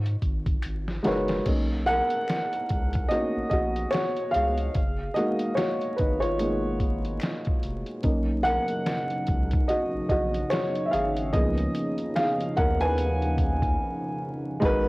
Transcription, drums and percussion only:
0.06 closed hi-hat soft
0.22 kick medium
0.22 closed hi-hat medium
0.46 kick medium
0.46 closed hi-hat soft
0.63 finger snap medium
0.63 closed hi-hat medium
0.88 snare medium
1.05 snare medium
1.05 closed hi-hat medium
1.28 snare medium
1.28 closed hi-hat soft
1.46 kick loud
1.46 closed hi-hat medium
1.46 crash medium
1.87 closed hi-hat medium
2.10 closed hi-hat soft
2.28 finger snap medium
2.28 snare loud
2.28 closed hi-hat medium
2.53 closed hi-hat soft
2.69 kick loud
2.69 closed hi-hat medium
2.93 kick medium
2.93 closed hi-hat soft
3.11 closed hi-hat medium
3.51 kick medium
3.51 closed hi-hat medium
3.76 closed hi-hat soft
3.91 finger snap medium
3.91 snare loud
3.91 closed hi-hat medium
4.16 closed hi-hat soft
4.34 closed hi-hat medium
4.58 closed hi-hat soft
4.74 kick loud
4.74 closed hi-hat medium
5.16 closed hi-hat medium
5.39 closed hi-hat medium
5.57 finger snap medium
5.57 snare loud
5.57 closed hi-hat medium
5.81 closed hi-hat soft
5.98 kick medium
5.98 closed hi-hat medium
6.22 closed hi-hat soft
6.39 closed hi-hat medium
6.80 kick medium
6.80 closed hi-hat medium
7.05 closed hi-hat soft
7.20 finger snap medium
7.20 snare loud
7.20 closed hi-hat medium
7.45 kick medium
7.45 closed hi-hat soft
7.63 closed hi-hat medium
7.86 closed hi-hat soft
8.03 kick loud
8.03 closed hi-hat medium
8.45 closed hi-hat medium
8.68 closed hi-hat medium
8.86 finger snap medium
8.86 snare loud
8.86 closed hi-hat medium
9.10 closed hi-hat soft
9.27 kick loud
9.27 closed hi-hat medium
9.51 kick medium
9.51 closed hi-hat soft
9.69 closed hi-hat medium
10.09 kick medium
10.09 closed hi-hat medium
10.34 closed hi-hat soft
10.50 finger snap medium
10.50 snare loud
10.50 closed hi-hat medium
10.75 closed hi-hat soft
10.93 closed hi-hat medium
11.16 closed hi-hat soft
11.33 kick loud
11.33 closed hi-hat medium
11.57 closed hi-hat soft
11.75 closed hi-hat medium
11.98 closed hi-hat soft
12.16 finger snap medium
12.16 snare loud
12.16 closed hi-hat medium
12.40 closed hi-hat soft
12.57 kick loud
12.57 closed hi-hat medium
12.80 closed hi-hat soft
12.98 closed hi-hat medium
13.22 closed hi-hat soft
13.38 kick medium
13.38 closed hi-hat medium
13.62 kick medium
13.62 closed hi-hat soft
14.62 kick loud
14.62 closed hi-hat medium

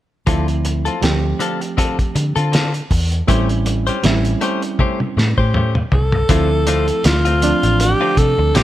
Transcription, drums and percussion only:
0.27 kick medium
0.27 closed hi-hat medium
0.48 closed hi-hat soft
0.65 closed hi-hat soft
0.86 closed hi-hat soft
1.03 snare medium
1.03 closed hi-hat medium
1.40 closed hi-hat medium
1.62 closed hi-hat soft
1.78 kick medium
1.78 closed hi-hat medium
1.99 kick medium
1.99 closed hi-hat soft
2.16 closed hi-hat medium
2.36 closed hi-hat soft
2.53 snare medium
2.53 closed hi-hat medium
2.74 closed hi-hat soft
2.91 kick medium
2.91 open hi-hat medium
3.12 closed hi-hat soft
3.28 kick medium
3.28 closed hi-hat medium
3.49 closed hi-hat soft
3.66 closed hi-hat medium
3.87 closed hi-hat soft
4.04 snare medium
4.04 closed hi-hat medium
4.25 closed hi-hat soft
4.41 closed hi-hat soft
4.62 closed hi-hat soft
4.79 kick medium
4.79 high tom soft
5.00 high tom soft
5.18 snare medium
5.38 kick medium
5.54 mid tom medium
5.75 mid tom medium
5.92 floor tom medium
6.12 floor tom medium
6.29 kick loud
6.29 closed hi-hat medium
6.67 closed hi-hat medium
6.88 closed hi-hat soft
7.04 snare loud
7.04 closed hi-hat medium
7.25 closed hi-hat soft
7.42 closed hi-hat medium
7.63 closed hi-hat soft
7.80 closed hi-hat medium
8.17 kick medium
8.17 closed hi-hat medium
8.55 snare medium
8.55 closed hi-hat medium

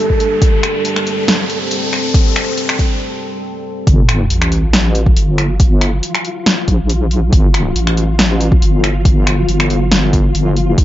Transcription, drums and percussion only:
0.10 kick medium
0.20 closed hi-hat medium
0.42 kick loud
0.42 closed hi-hat medium
0.63 finger snap medium
0.63 closed hi-hat soft
0.85 closed hi-hat medium
0.96 finger snap medium
1.07 closed hi-hat medium
1.28 snare loud
1.28 closed hi-hat medium
1.50 closed hi-hat soft
1.71 closed hi-hat medium
1.93 finger snap soft
1.93 closed hi-hat medium
2.14 kick loud
2.14 closed hi-hat medium
2.36 finger snap medium
2.36 closed hi-hat soft
2.58 closed hi-hat medium
2.69 finger snap medium
2.79 kick medium
2.79 closed hi-hat soft
3.87 kick loud
3.87 closed hi-hat medium
4.09 finger snap medium
4.09 closed hi-hat medium
4.30 closed hi-hat medium
4.42 finger snap medium
4.52 closed hi-hat medium
4.73 snare loud
4.73 closed hi-hat medium
4.95 closed hi-hat medium
5.06 kick loud
5.17 closed hi-hat medium
5.38 finger snap medium
5.38 closed hi-hat medium
5.60 kick loud
5.60 closed hi-hat medium
5.81 finger snap medium
5.81 closed hi-hat medium
6.03 closed hi-hat medium
6.15 finger snap medium
6.25 closed hi-hat medium
6.46 snare loud
6.46 closed hi-hat medium
6.68 kick medium
6.68 closed hi-hat medium
6.89 closed hi-hat medium
7.11 closed hi-hat medium
7.33 kick loud
7.33 closed hi-hat medium
7.54 finger snap medium
7.54 closed hi-hat medium
7.76 closed hi-hat medium
7.87 finger snap medium
7.97 closed hi-hat medium
8.19 snare loud
8.19 closed hi-hat medium
8.41 closed hi-hat medium
8.52 kick loud
8.62 closed hi-hat medium
8.84 finger snap medium
8.84 closed hi-hat medium
9.05 kick loud
9.05 closed hi-hat medium
9.27 finger snap medium
9.27 closed hi-hat medium
9.49 closed hi-hat medium
9.60 finger snap medium
9.70 closed hi-hat medium
9.92 snare loud
9.92 closed hi-hat medium
10.13 kick medium
10.13 closed hi-hat medium
10.35 closed hi-hat medium
10.57 closed hi-hat soft
10.78 kick loud
10.78 closed hi-hat medium

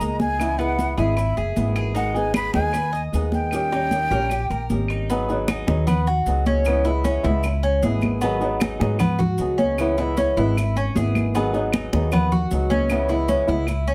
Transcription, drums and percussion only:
0.01 high conga soft
0.01 maracas medium
0.20 high conga medium
0.20 maracas soft
0.39 high conga soft
0.39 claves medium
0.39 maracas medium
0.59 high conga soft
0.59 maracas soft
0.79 high conga medium
0.79 maracas medium
0.98 high conga soft
0.98 maracas soft
1.17 high conga soft
1.17 claves medium
1.17 maracas medium
1.37 high conga soft
1.37 maracas soft
1.56 high conga medium
1.56 maracas medium
1.76 claves medium
1.76 maracas soft
1.96 high conga soft
1.96 maracas medium
2.15 high conga soft
2.15 maracas soft
2.34 high conga medium
2.34 claves medium
2.34 maracas medium
2.54 high conga medium
2.54 maracas soft
2.73 high conga soft
2.73 claves medium
2.73 maracas medium
2.93 high conga soft
2.93 maracas soft
3.13 high conga soft
3.13 maracas medium
3.32 high conga medium
3.32 maracas soft
3.51 high conga soft
3.51 claves medium
3.51 maracas medium
3.71 high conga soft
3.71 maracas soft
3.91 high conga medium
3.91 maracas medium
4.11 high conga soft
4.11 maracas soft
4.30 high conga soft
4.30 claves medium
4.30 maracas medium
4.50 high conga soft
4.50 maracas soft
4.70 high conga medium
4.70 maracas medium
4.88 claves medium
4.88 maracas soft
5.10 high conga soft
5.10 maracas medium
5.29 high conga soft
5.29 maracas soft
5.48 high conga loud
5.48 claves medium
5.48 maracas medium
5.68 high conga loud
5.68 maracas soft
5.87 high conga soft
5.87 low conga medium
5.87 claves medium
5.87 maracas medium
6.07 high conga soft
6.07 maracas soft
6.26 high conga soft
6.26 maracas medium
6.46 high conga medium
6.46 maracas soft
6.65 high conga soft
6.65 claves medium
6.65 maracas medium
6.84 high conga soft
6.84 maracas soft
7.04 high conga medium
7.04 maracas medium
7.24 high conga soft
7.24 maracas soft
7.43 high conga soft
7.43 claves medium
7.43 maracas medium
7.63 high conga soft
7.63 maracas soft
7.83 high conga medium
7.83 maracas medium
8.01 high conga medium
8.01 claves medium
8.01 maracas soft
8.21 high conga soft
8.21 maracas medium
8.41 high conga soft
8.41 maracas soft
8.60 high conga loud
8.60 claves medium
8.60 maracas medium
8.81 high conga loud
8.81 maracas soft
8.99 high conga soft
8.99 low conga loud
8.99 claves medium
8.99 maracas medium
9.19 high conga soft
9.19 low conga medium
9.19 maracas soft
9.38 high conga soft
9.38 maracas medium
9.59 high conga medium
9.59 maracas soft
9.78 high conga soft
9.78 claves medium
9.78 maracas medium
9.97 high conga soft
9.97 maracas soft
10.17 high conga medium
10.17 maracas medium
10.37 high conga soft
10.37 maracas soft
10.56 high conga soft
10.56 claves medium
10.56 maracas medium
10.76 high conga soft
10.76 maracas soft
10.96 high conga medium
10.96 maracas medium
11.15 high conga medium
11.15 claves medium
11.15 maracas soft
11.35 high conga soft
11.35 maracas medium
11.54 high conga soft
11.54 maracas soft
11.73 high conga medium
11.73 claves medium
11.73 maracas medium
11.93 high conga medium
11.93 maracas soft
12.12 high conga soft
12.12 low conga medium
12.12 claves medium
12.12 maracas medium
12.31 high conga soft
12.31 low conga medium
12.31 maracas soft
12.51 high conga soft
12.51 maracas medium
12.70 high conga medium
12.70 maracas soft
12.90 high conga soft
12.90 claves medium
12.90 maracas medium
13.09 high conga soft
13.09 maracas soft
13.28 high conga medium
13.28 maracas medium
13.48 high conga soft
13.48 maracas soft
13.67 high conga soft
13.67 claves medium
13.67 maracas medium
13.87 high conga soft
13.87 maracas soft

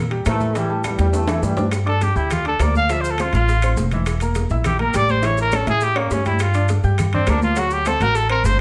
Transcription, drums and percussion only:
0.11 high conga soft
0.11 high timbale medium
0.26 high bongo medium
0.26 low bongo medium
0.26 high conga medium
0.26 high timbale loud
0.26 low timbale medium
0.26 claves medium
0.26 maracas medium
0.40 high conga medium
0.40 maracas soft
0.55 high bongo medium
0.55 high timbale medium
0.55 maracas medium
0.70 high bongo soft
0.70 high conga soft
0.84 high bongo medium
0.84 high conga medium
0.84 high timbale medium
0.84 claves medium
0.84 maracas medium
0.98 high bongo soft
0.98 high conga loud
0.98 high timbale medium
0.98 maracas soft
1.13 high bongo medium
1.13 high conga soft
1.13 high timbale medium
1.13 maracas medium
1.28 high bongo medium
1.28 high conga soft
1.28 high timbale loud
1.28 claves medium
1.28 maracas medium
1.43 low bongo loud
1.43 high conga medium
1.43 maracas medium
1.57 low bongo medium
1.57 high conga medium
1.57 low timbale loud
1.57 maracas soft
1.71 high bongo medium
1.71 high conga soft
1.71 high timbale loud
1.71 claves medium
1.71 maracas medium
1.87 high conga soft
1.87 high timbale medium
2.01 high bongo medium
2.01 high conga medium
2.01 high timbale medium
2.01 maracas medium
2.16 high conga soft
2.16 maracas soft
2.31 high bongo medium
2.31 high conga soft
2.31 low conga medium
2.31 high timbale medium
2.31 claves medium
2.31 maracas medium
2.45 high conga soft
2.45 high timbale medium
2.60 high bongo medium
2.60 low bongo medium
2.60 high conga medium
2.60 high timbale medium
2.60 low timbale medium
2.60 claves medium
2.60 maracas medium
2.75 high conga medium
2.75 maracas soft
2.89 high bongo medium
2.89 high timbale medium
2.89 maracas medium
3.04 high bongo soft
3.04 high conga soft
3.04 maracas medium
3.18 high bongo medium
3.18 high conga medium
3.18 high timbale medium
3.18 claves medium
3.18 maracas medium
3.33 high bongo soft
3.33 high conga loud
3.33 high timbale medium
3.33 maracas soft
3.49 high bongo medium
3.49 high conga soft
3.49 maracas medium
3.62 high bongo soft
3.62 high conga soft
3.62 high timbale loud
3.62 claves medium
3.62 maracas medium
3.77 high bongo medium
3.77 low bongo medium
3.77 high conga medium
3.77 maracas medium
3.91 high conga medium
3.91 high timbale medium
3.91 maracas soft
4.06 high bongo medium
4.06 high timbale medium
4.06 claves medium
4.06 maracas medium
4.20 high conga soft
4.20 high timbale medium
4.20 maracas medium
4.35 high bongo medium
4.35 high conga medium
4.35 high timbale medium
4.35 maracas medium
4.50 high conga soft
4.50 maracas soft
4.64 high bongo medium
4.64 high conga soft
4.64 low conga medium
4.64 high timbale medium
4.64 claves medium
4.64 maracas medium
4.79 high conga soft
4.79 high timbale medium
4.94 high bongo medium
4.94 low bongo medium
4.94 high conga medium
4.94 high timbale medium
4.94 claves medium
4.94 maracas medium
5.09 high conga medium
5.09 maracas soft
5.23 high bongo medium
5.23 high timbale medium
5.23 maracas medium
5.38 high bongo soft
5.38 high conga soft
5.38 maracas medium
5.52 high bongo medium
5.52 high conga medium
5.52 high timbale medium
5.52 claves medium
5.52 maracas medium
5.67 high bongo soft
5.67 high conga medium
5.67 high timbale medium
5.67 maracas soft
5.81 high bongo medium
5.81 high conga soft
5.81 maracas medium
5.96 high bongo soft
5.96 high conga soft
5.96 high timbale loud
5.96 claves medium
6.11 high bongo medium
6.11 low bongo medium
6.11 high conga medium
6.11 low timbale medium
6.11 maracas medium
6.25 high conga medium
6.25 high timbale medium
6.25 maracas soft
6.39 high bongo medium
6.39 high conga soft
6.39 high timbale loud
6.39 claves medium
6.39 maracas medium
6.54 high conga soft
6.54 high timbale medium
6.54 maracas medium
6.68 high bongo medium
6.68 high conga medium
6.68 high timbale medium
6.68 maracas medium
6.84 high conga soft
6.84 maracas soft
6.98 high bongo medium
6.98 high conga soft
6.98 low conga medium
6.98 high timbale medium
6.98 claves medium
6.98 maracas medium
7.13 high conga soft
7.13 low conga medium
7.13 high timbale medium
7.27 high bongo medium
7.27 low bongo medium
7.27 high conga medium
7.27 high timbale loud
7.27 low timbale medium
7.27 claves medium
7.27 maracas medium
7.42 high conga medium
7.42 maracas soft
7.56 high bongo medium
7.56 high conga soft
7.56 high timbale medium
7.56 maracas medium
7.71 high bongo soft
7.71 high conga soft
7.71 maracas medium
7.85 high bongo medium
7.85 high conga medium
7.85 high timbale medium
7.85 claves medium
7.85 maracas medium
8.00 high bongo soft
8.00 high conga medium
8.00 high timbale medium
8.00 maracas soft
8.15 high bongo medium
8.15 high conga soft
8.15 maracas medium
8.30 high bongo soft
8.30 high conga soft
8.30 high timbale loud
8.30 claves medium
8.45 high bongo medium
8.45 low bongo medium
8.45 high conga medium
8.45 maracas medium

